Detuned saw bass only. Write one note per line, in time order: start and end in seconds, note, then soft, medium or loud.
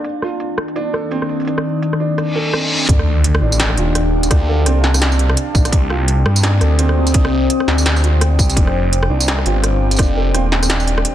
2.89 3.41 D2 loud
3.42 3.76 A1 medium
3.77 4.29 D#1 loud
4.31 4.65 D2 loud
4.66 5.36 C2 medium
5.55 5.71 A1 medium
5.73 6.25 C2 loud
6.26 6.60 G2 loud
6.62 7.14 D2 loud
7.14 7.49 C2 loud
7.68 8.38 D2 medium
8.39 8.55 C2 medium
8.57 9.09 F1 loud
9.10 9.44 C2 loud
9.46 9.98 G1 loud
9.99 10.33 F1 loud
10.34 11.04 D#1 loud